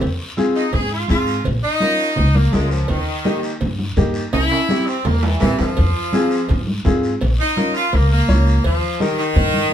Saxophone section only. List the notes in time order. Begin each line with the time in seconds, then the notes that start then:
0.55 D#4
0.74 G#4
0.92 F4
1.09 F4
1.63 D#4
2.35 A#3
2.52 G#3
2.71 F3
2.88 D#3
4.32 E4
4.87 C4
5.05 A#3
5.23 E3
5.40 E3
5.59 F3
7.39 D#4
7.75 F4
7.93 A#3
8.11 A#3
8.65 F3
9.00 D#3
9.18 D#3